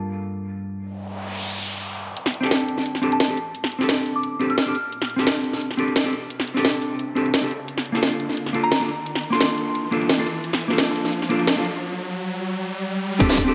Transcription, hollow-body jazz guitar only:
0.00 2.14 G2 medium
0.00 2.14 A#3 medium
0.00 2.15 F4 medium
0.00 2.16 A4 medium
2.40 3.00 C4 medium
2.40 3.00 D4 medium
2.40 3.01 G4 medium
2.45 3.02 A4 loud
3.02 3.17 C4 medium
3.02 3.17 D4 medium
3.02 3.18 G4 medium
3.02 3.18 A4 loud
3.28 3.37 C4 medium
3.28 3.37 D4 medium
3.28 3.38 G4 medium
3.28 3.38 A4 medium
3.79 4.38 C4 medium
3.79 4.38 D4 medium
3.79 4.39 G4 medium
3.83 4.40 A4 loud
4.39 4.55 C4 loud
4.39 4.55 D4 medium
4.39 4.55 G4 medium
4.39 4.56 A4 loud
4.66 4.75 C4 medium
4.66 4.75 D4 medium
4.66 4.76 G4 medium
4.66 4.76 A4 medium
5.16 5.75 C4 medium
5.16 5.76 D4 medium
5.16 5.77 G4 medium
5.21 5.78 A4 loud
5.77 5.93 C4 medium
5.77 5.93 D4 medium
5.77 5.93 G4 medium
5.77 5.94 A4 loud
6.04 6.13 C4 medium
6.04 6.13 D4 medium
6.04 6.14 G4 medium
6.04 6.14 A4 medium
6.54 7.13 C4 medium
6.54 7.14 D4 medium
6.54 7.15 G4 medium
6.59 7.16 A4 loud
7.15 7.30 C4 loud
7.15 7.31 D4 medium
7.15 7.31 G4 medium
7.15 7.32 A4 loud
7.42 7.51 C4 medium
7.42 7.51 D4 medium
7.42 7.52 G4 medium
7.42 7.52 A4 medium
7.92 8.51 A#3 medium
7.92 8.52 D4 medium
7.92 8.53 F4 medium
7.97 8.54 A4 loud
8.53 8.68 A#3 loud
8.53 8.69 D4 medium
8.53 8.69 F4 medium
8.53 8.70 A4 loud
8.80 8.89 A#3 medium
8.80 8.89 D4 medium
8.80 8.90 F4 medium
8.80 8.90 A4 medium
9.30 9.89 A#3 medium
9.30 9.90 D4 medium
9.30 9.91 F4 medium
9.35 9.92 A4 loud
9.91 10.06 A#3 loud
9.91 10.07 D4 medium
9.91 10.07 F4 medium
9.91 10.07 A4 loud
10.18 10.27 A#3 medium
10.18 10.27 D4 medium
10.18 10.27 F4 medium
10.18 10.28 A4 medium
10.68 11.27 A#3 medium
10.68 11.28 D4 medium
10.68 11.29 F4 medium
10.73 11.30 A4 loud
11.29 11.44 A#3 loud
11.29 11.45 D4 medium
11.29 11.45 F4 loud
11.29 11.45 A4 loud
11.56 11.65 A#3 medium
11.56 11.65 D4 medium
11.56 11.65 F4 medium
11.56 11.66 A4 medium
13.19 13.42 C4 loud
13.19 13.43 D4 medium
13.19 13.43 G4 loud
13.19 13.43 A4 loud
13.44 13.54 C4 medium
13.44 13.54 D4 medium
13.44 13.54 G4 medium
13.49 13.54 A4 loud

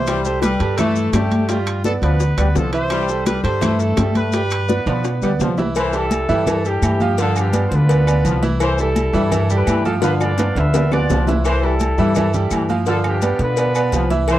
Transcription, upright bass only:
0.00 0.55 C2 medium
0.60 1.10 G2 medium
1.13 1.96 G2 medium
2.02 2.35 D2 loud
2.38 2.54 D2 medium
2.55 3.38 C2 loud
3.44 3.94 G2 loud
3.97 4.81 G2 medium
4.86 5.20 B2 loud
5.22 5.39 D2 medium
5.39 6.23 C2 medium
6.29 6.79 G2 medium
6.82 7.66 G2 loud
7.71 8.21 D2 loud
8.25 9.08 C2 loud
9.13 9.63 G2 loud
9.67 10.50 G2 medium
10.55 11.05 D2 medium
11.10 11.93 C2 medium
11.98 12.48 G2 loud
12.51 13.34 G2 medium
13.39 13.89 B2 loud
13.92 14.39 C2 loud

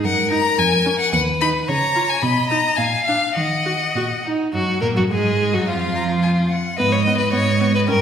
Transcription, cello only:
0.04 0.47 F#2 medium
0.58 1.01 F2 medium
1.13 1.56 D#2 medium
1.69 2.11 C#3 medium
2.23 2.66 B2 medium
2.78 3.24 A#2 medium
3.36 3.83 D#3 medium
3.95 4.42 A#2 soft
4.54 4.62 F#2 medium
4.82 4.88 A#2 medium
4.96 5.02 F#2 soft
5.11 5.55 G#2 medium
5.53 5.67 F#2 soft
5.68 6.50 F2 medium
6.79 7.27 G#2 medium
7.34 7.83 G#2 medium
7.89 8.02 G2 medium

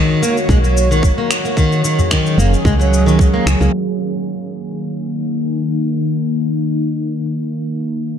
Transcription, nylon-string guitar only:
0.00 0.21 D#3 medium
0.22 0.36 A#3 medium
0.50 0.57 G#3 medium
0.64 0.89 F#3 medium
0.91 1.03 D#3 medium
1.18 1.30 A#3 medium
1.45 1.57 A#3 medium
1.57 1.83 D#3 loud
1.85 1.98 D#3 medium
2.12 2.37 D#3 medium
2.38 2.52 A#3 loud
2.65 2.73 G#3 medium
2.79 3.05 F#3 medium
3.06 3.18 D#3 medium
3.34 3.46 A#3 medium
3.61 3.73 A#3 medium

